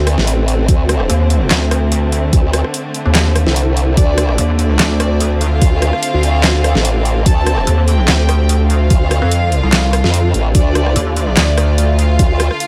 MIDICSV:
0, 0, Header, 1, 6, 480
1, 0, Start_track
1, 0, Tempo, 410959
1, 799, Time_signature, 4, 2, 24, 8
1, 14802, End_track
2, 0, Start_track
2, 0, Title_t, "Violin section"
2, 0, Program_c, 0, 48
2, 4639, Note_on_c, 0, 62, 82
2, 4639, Note_on_c, 0, 74, 105
2, 5270, Note_off_c, 0, 62, 0
2, 5270, Note_off_c, 0, 74, 0
2, 5359, Note_on_c, 0, 62, 83
2, 5359, Note_on_c, 0, 74, 99
2, 6230, Note_off_c, 0, 62, 0
2, 6230, Note_off_c, 0, 74, 0
2, 6318, Note_on_c, 0, 65, 88
2, 6318, Note_on_c, 0, 77, 110
2, 8389, Note_off_c, 0, 65, 0
2, 8390, Note_off_c, 0, 77, 0
2, 8479, Note_on_c, 0, 69, 83
2, 8479, Note_on_c, 0, 81, 106
2, 9110, Note_off_c, 0, 69, 0
2, 9110, Note_off_c, 0, 81, 0
2, 9200, Note_on_c, 0, 67, 82
2, 9200, Note_on_c, 0, 79, 101
2, 10071, Note_off_c, 0, 67, 0
2, 10071, Note_off_c, 0, 79, 0
2, 10160, Note_on_c, 0, 77, 108
2, 10161, Note_on_c, 0, 65, 87
2, 12231, Note_off_c, 0, 65, 0
2, 12231, Note_off_c, 0, 77, 0
2, 12319, Note_on_c, 0, 74, 107
2, 12320, Note_on_c, 0, 62, 82
2, 12950, Note_off_c, 0, 62, 0
2, 12950, Note_off_c, 0, 74, 0
2, 13038, Note_on_c, 0, 74, 104
2, 13039, Note_on_c, 0, 62, 84
2, 13910, Note_off_c, 0, 62, 0
2, 13910, Note_off_c, 0, 74, 0
2, 13999, Note_on_c, 0, 65, 89
2, 14000, Note_on_c, 0, 77, 110
2, 14802, Note_off_c, 0, 65, 0
2, 14802, Note_off_c, 0, 77, 0
2, 14802, End_track
3, 0, Start_track
3, 0, Title_t, "String section"
3, 0, Program_c, 1, 48
3, 0, Note_on_c, 1, 50, 85
3, 0, Note_on_c, 1, 57, 77
3, 0, Note_on_c, 1, 60, 96
3, 4619, Note_off_c, 1, 60, 0
3, 4638, Note_on_c, 1, 60, 96
3, 12297, Note_off_c, 1, 60, 0
3, 12318, Note_on_c, 1, 65, 95
3, 14802, Note_off_c, 1, 50, 0
3, 14802, Note_off_c, 1, 57, 0
3, 14802, Note_off_c, 1, 65, 0
3, 14802, End_track
4, 0, Start_track
4, 0, Title_t, "Wobble bass"
4, 0, Program_c, 2, 39
4, 1279, Note_on_c, 2, 39, 97
4, 1741, Note_off_c, 2, 39, 0
4, 1760, Note_on_c, 2, 38, 97
4, 2701, Note_off_c, 2, 38, 0
4, 3568, Note_on_c, 2, 39, 99
4, 4027, Note_off_c, 2, 39, 0
4, 5119, Note_on_c, 2, 39, 100
4, 5581, Note_off_c, 2, 39, 0
4, 8960, Note_on_c, 2, 39, 98
4, 9422, Note_off_c, 2, 39, 0
4, 9440, Note_on_c, 2, 38, 97
4, 10382, Note_off_c, 2, 38, 0
4, 10768, Note_on_c, 2, 41, 100
4, 11227, Note_off_c, 2, 41, 0
4, 11248, Note_on_c, 2, 36, 103
4, 11707, Note_off_c, 2, 36, 0
4, 12799, Note_on_c, 2, 39, 100
4, 13261, Note_off_c, 2, 39, 0
4, 13279, Note_on_c, 2, 38, 99
4, 14221, Note_off_c, 2, 38, 0
4, 14802, End_track
5, 0, Start_track
5, 0, Title_t, "Wobble bass"
5, 0, Program_c, 3, 39
5, 0, Note_on_c, 3, 38, 100
5, 187, Note_off_c, 3, 38, 0
5, 208, Note_on_c, 3, 33, 102
5, 781, Note_off_c, 3, 33, 0
5, 799, Note_on_c, 3, 38, 95
5, 1261, Note_off_c, 3, 38, 0
5, 2719, Note_on_c, 3, 38, 94
5, 3067, Note_off_c, 3, 38, 0
5, 4048, Note_on_c, 3, 36, 99
5, 4621, Note_off_c, 3, 36, 0
5, 4638, Note_on_c, 3, 38, 96
5, 5101, Note_off_c, 3, 38, 0
5, 6559, Note_on_c, 3, 38, 100
5, 6907, Note_off_c, 3, 38, 0
5, 7168, Note_on_c, 3, 38, 100
5, 7867, Note_off_c, 3, 38, 0
5, 7888, Note_on_c, 3, 33, 102
5, 8461, Note_off_c, 3, 33, 0
5, 8479, Note_on_c, 3, 38, 98
5, 8941, Note_off_c, 3, 38, 0
5, 10400, Note_on_c, 3, 38, 96
5, 10747, Note_off_c, 3, 38, 0
5, 11728, Note_on_c, 3, 41, 100
5, 12061, Note_off_c, 3, 41, 0
5, 12079, Note_on_c, 3, 33, 99
5, 12301, Note_off_c, 3, 33, 0
5, 12319, Note_on_c, 3, 38, 97
5, 12781, Note_off_c, 3, 38, 0
5, 14239, Note_on_c, 3, 38, 98
5, 14587, Note_off_c, 3, 38, 0
5, 14802, End_track
6, 0, Start_track
6, 0, Title_t, "Drums"
6, 80, Note_on_c, 9, 37, 84
6, 80, Note_on_c, 9, 42, 54
6, 196, Note_off_c, 9, 37, 0
6, 196, Note_off_c, 9, 42, 0
6, 209, Note_on_c, 9, 38, 36
6, 320, Note_on_c, 9, 42, 80
6, 325, Note_off_c, 9, 38, 0
6, 437, Note_off_c, 9, 42, 0
6, 560, Note_on_c, 9, 42, 53
6, 677, Note_off_c, 9, 42, 0
6, 799, Note_on_c, 9, 36, 114
6, 800, Note_on_c, 9, 42, 86
6, 916, Note_off_c, 9, 36, 0
6, 917, Note_off_c, 9, 42, 0
6, 1040, Note_on_c, 9, 37, 86
6, 1040, Note_on_c, 9, 42, 56
6, 1157, Note_off_c, 9, 37, 0
6, 1157, Note_off_c, 9, 42, 0
6, 1168, Note_on_c, 9, 37, 56
6, 1280, Note_on_c, 9, 42, 81
6, 1285, Note_off_c, 9, 37, 0
6, 1397, Note_off_c, 9, 42, 0
6, 1520, Note_on_c, 9, 42, 56
6, 1637, Note_off_c, 9, 42, 0
6, 1760, Note_on_c, 9, 37, 54
6, 1760, Note_on_c, 9, 38, 112
6, 1760, Note_on_c, 9, 39, 81
6, 1760, Note_on_c, 9, 42, 78
6, 1877, Note_off_c, 9, 37, 0
6, 1877, Note_off_c, 9, 38, 0
6, 1877, Note_off_c, 9, 39, 0
6, 1877, Note_off_c, 9, 42, 0
6, 2000, Note_on_c, 9, 37, 87
6, 2000, Note_on_c, 9, 42, 57
6, 2117, Note_off_c, 9, 37, 0
6, 2117, Note_off_c, 9, 42, 0
6, 2240, Note_on_c, 9, 42, 85
6, 2356, Note_off_c, 9, 42, 0
6, 2480, Note_on_c, 9, 42, 56
6, 2597, Note_off_c, 9, 42, 0
6, 2719, Note_on_c, 9, 36, 119
6, 2720, Note_on_c, 9, 42, 87
6, 2836, Note_off_c, 9, 36, 0
6, 2837, Note_off_c, 9, 42, 0
6, 2960, Note_on_c, 9, 37, 84
6, 2960, Note_on_c, 9, 42, 58
6, 3077, Note_off_c, 9, 37, 0
6, 3077, Note_off_c, 9, 42, 0
6, 3088, Note_on_c, 9, 37, 55
6, 3200, Note_on_c, 9, 42, 81
6, 3205, Note_off_c, 9, 37, 0
6, 3316, Note_off_c, 9, 42, 0
6, 3439, Note_on_c, 9, 42, 56
6, 3556, Note_off_c, 9, 42, 0
6, 3679, Note_on_c, 9, 38, 107
6, 3679, Note_on_c, 9, 39, 88
6, 3679, Note_on_c, 9, 42, 79
6, 3796, Note_off_c, 9, 38, 0
6, 3796, Note_off_c, 9, 39, 0
6, 3796, Note_off_c, 9, 42, 0
6, 3919, Note_on_c, 9, 37, 85
6, 3919, Note_on_c, 9, 42, 57
6, 4036, Note_off_c, 9, 37, 0
6, 4036, Note_off_c, 9, 42, 0
6, 4048, Note_on_c, 9, 38, 36
6, 4159, Note_on_c, 9, 42, 86
6, 4165, Note_off_c, 9, 38, 0
6, 4276, Note_off_c, 9, 42, 0
6, 4400, Note_on_c, 9, 42, 55
6, 4517, Note_off_c, 9, 42, 0
6, 4639, Note_on_c, 9, 36, 119
6, 4639, Note_on_c, 9, 42, 85
6, 4756, Note_off_c, 9, 36, 0
6, 4756, Note_off_c, 9, 42, 0
6, 4878, Note_on_c, 9, 37, 78
6, 4878, Note_on_c, 9, 42, 58
6, 4995, Note_off_c, 9, 37, 0
6, 4995, Note_off_c, 9, 42, 0
6, 5007, Note_on_c, 9, 37, 53
6, 5119, Note_on_c, 9, 42, 84
6, 5124, Note_off_c, 9, 37, 0
6, 5235, Note_off_c, 9, 42, 0
6, 5359, Note_on_c, 9, 42, 56
6, 5476, Note_off_c, 9, 42, 0
6, 5599, Note_on_c, 9, 37, 50
6, 5599, Note_on_c, 9, 38, 111
6, 5599, Note_on_c, 9, 39, 89
6, 5599, Note_on_c, 9, 42, 80
6, 5716, Note_off_c, 9, 37, 0
6, 5716, Note_off_c, 9, 38, 0
6, 5716, Note_off_c, 9, 39, 0
6, 5716, Note_off_c, 9, 42, 0
6, 5839, Note_on_c, 9, 37, 83
6, 5839, Note_on_c, 9, 42, 57
6, 5956, Note_off_c, 9, 37, 0
6, 5956, Note_off_c, 9, 42, 0
6, 6079, Note_on_c, 9, 42, 86
6, 6196, Note_off_c, 9, 42, 0
6, 6318, Note_on_c, 9, 42, 57
6, 6435, Note_off_c, 9, 42, 0
6, 6559, Note_on_c, 9, 36, 127
6, 6559, Note_on_c, 9, 42, 83
6, 6675, Note_off_c, 9, 42, 0
6, 6676, Note_off_c, 9, 36, 0
6, 6798, Note_on_c, 9, 37, 78
6, 6798, Note_on_c, 9, 42, 54
6, 6915, Note_off_c, 9, 37, 0
6, 6915, Note_off_c, 9, 42, 0
6, 6928, Note_on_c, 9, 37, 52
6, 7038, Note_on_c, 9, 42, 80
6, 7044, Note_off_c, 9, 37, 0
6, 7155, Note_off_c, 9, 42, 0
6, 7279, Note_on_c, 9, 42, 57
6, 7395, Note_off_c, 9, 42, 0
6, 7519, Note_on_c, 9, 38, 114
6, 7519, Note_on_c, 9, 39, 90
6, 7519, Note_on_c, 9, 42, 77
6, 7635, Note_off_c, 9, 38, 0
6, 7635, Note_off_c, 9, 39, 0
6, 7635, Note_off_c, 9, 42, 0
6, 7759, Note_on_c, 9, 37, 76
6, 7759, Note_on_c, 9, 42, 55
6, 7876, Note_off_c, 9, 37, 0
6, 7876, Note_off_c, 9, 42, 0
6, 7887, Note_on_c, 9, 38, 38
6, 7999, Note_on_c, 9, 42, 85
6, 8004, Note_off_c, 9, 38, 0
6, 8116, Note_off_c, 9, 42, 0
6, 8238, Note_on_c, 9, 42, 56
6, 8355, Note_off_c, 9, 42, 0
6, 8479, Note_on_c, 9, 36, 127
6, 8479, Note_on_c, 9, 42, 79
6, 8596, Note_off_c, 9, 36, 0
6, 8596, Note_off_c, 9, 42, 0
6, 8719, Note_on_c, 9, 37, 77
6, 8719, Note_on_c, 9, 42, 54
6, 8836, Note_off_c, 9, 37, 0
6, 8836, Note_off_c, 9, 42, 0
6, 8848, Note_on_c, 9, 37, 53
6, 8960, Note_on_c, 9, 42, 80
6, 8965, Note_off_c, 9, 37, 0
6, 9077, Note_off_c, 9, 42, 0
6, 9200, Note_on_c, 9, 42, 54
6, 9317, Note_off_c, 9, 42, 0
6, 9440, Note_on_c, 9, 37, 49
6, 9440, Note_on_c, 9, 38, 122
6, 9440, Note_on_c, 9, 39, 90
6, 9440, Note_on_c, 9, 42, 76
6, 9557, Note_off_c, 9, 37, 0
6, 9557, Note_off_c, 9, 38, 0
6, 9557, Note_off_c, 9, 39, 0
6, 9557, Note_off_c, 9, 42, 0
6, 9679, Note_on_c, 9, 37, 79
6, 9679, Note_on_c, 9, 42, 54
6, 9796, Note_off_c, 9, 37, 0
6, 9796, Note_off_c, 9, 42, 0
6, 9919, Note_on_c, 9, 42, 81
6, 10036, Note_off_c, 9, 42, 0
6, 10160, Note_on_c, 9, 42, 53
6, 10277, Note_off_c, 9, 42, 0
6, 10399, Note_on_c, 9, 42, 75
6, 10400, Note_on_c, 9, 36, 127
6, 10516, Note_off_c, 9, 36, 0
6, 10516, Note_off_c, 9, 42, 0
6, 10640, Note_on_c, 9, 37, 82
6, 10640, Note_on_c, 9, 42, 50
6, 10756, Note_off_c, 9, 37, 0
6, 10756, Note_off_c, 9, 42, 0
6, 10767, Note_on_c, 9, 37, 52
6, 10880, Note_on_c, 9, 42, 75
6, 10884, Note_off_c, 9, 37, 0
6, 10996, Note_off_c, 9, 42, 0
6, 11120, Note_on_c, 9, 42, 51
6, 11237, Note_off_c, 9, 42, 0
6, 11360, Note_on_c, 9, 38, 119
6, 11360, Note_on_c, 9, 39, 84
6, 11360, Note_on_c, 9, 42, 70
6, 11476, Note_off_c, 9, 38, 0
6, 11476, Note_off_c, 9, 39, 0
6, 11476, Note_off_c, 9, 42, 0
6, 11600, Note_on_c, 9, 37, 82
6, 11600, Note_on_c, 9, 42, 52
6, 11716, Note_off_c, 9, 37, 0
6, 11716, Note_off_c, 9, 42, 0
6, 11728, Note_on_c, 9, 38, 39
6, 11840, Note_on_c, 9, 42, 77
6, 11845, Note_off_c, 9, 38, 0
6, 11956, Note_off_c, 9, 42, 0
6, 12080, Note_on_c, 9, 42, 53
6, 12197, Note_off_c, 9, 42, 0
6, 12319, Note_on_c, 9, 36, 120
6, 12319, Note_on_c, 9, 42, 81
6, 12436, Note_off_c, 9, 36, 0
6, 12436, Note_off_c, 9, 42, 0
6, 12560, Note_on_c, 9, 37, 79
6, 12560, Note_on_c, 9, 42, 52
6, 12676, Note_off_c, 9, 37, 0
6, 12676, Note_off_c, 9, 42, 0
6, 12689, Note_on_c, 9, 37, 53
6, 12800, Note_on_c, 9, 42, 73
6, 12806, Note_off_c, 9, 37, 0
6, 12916, Note_off_c, 9, 42, 0
6, 13040, Note_on_c, 9, 42, 52
6, 13157, Note_off_c, 9, 42, 0
6, 13280, Note_on_c, 9, 37, 50
6, 13280, Note_on_c, 9, 38, 117
6, 13280, Note_on_c, 9, 39, 81
6, 13280, Note_on_c, 9, 42, 73
6, 13397, Note_off_c, 9, 37, 0
6, 13397, Note_off_c, 9, 38, 0
6, 13397, Note_off_c, 9, 39, 0
6, 13397, Note_off_c, 9, 42, 0
6, 13520, Note_on_c, 9, 37, 84
6, 13520, Note_on_c, 9, 42, 52
6, 13637, Note_off_c, 9, 37, 0
6, 13637, Note_off_c, 9, 42, 0
6, 13760, Note_on_c, 9, 42, 78
6, 13877, Note_off_c, 9, 42, 0
6, 14000, Note_on_c, 9, 42, 51
6, 14117, Note_off_c, 9, 42, 0
6, 14239, Note_on_c, 9, 36, 114
6, 14240, Note_on_c, 9, 42, 81
6, 14356, Note_off_c, 9, 36, 0
6, 14357, Note_off_c, 9, 42, 0
6, 14480, Note_on_c, 9, 37, 86
6, 14480, Note_on_c, 9, 42, 54
6, 14597, Note_off_c, 9, 37, 0
6, 14597, Note_off_c, 9, 42, 0
6, 14609, Note_on_c, 9, 37, 59
6, 14720, Note_on_c, 9, 42, 76
6, 14725, Note_off_c, 9, 37, 0
6, 14802, Note_off_c, 9, 42, 0
6, 14802, End_track
0, 0, End_of_file